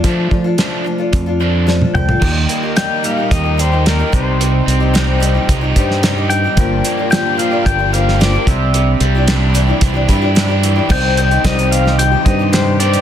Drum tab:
CC |----------------|x---------------|----------------|----------------|
HH |x---x---x-------|--x-x-x-x-x-x-x-|x-x-x-x-x-x-x-x-|x-x-x-x-x-x-x-x-|
SD |----o-------o---|----o-------o---|----o------oo---|----o------oo---|
T1 |-------------o--|----------------|----------------|----------------|
T2 |--------------o-|----------------|----------------|----------------|
FT |---------------o|----------------|----------------|----------------|
BD |o-o-----o-------|o-------o-----o-|--------o-o-----|o-------o-----o-|

CC |----------------|x---------------|
HH |x-x-x-x-x-x-x-x-|--xxxxx-x-x-x-xx|
SD |----o-------o---|----o--o----o---|
T1 |----------------|----------------|
T2 |----------------|----------------|
FT |----------------|----------------|
BD |--------o-o-----|o---o-----o-----|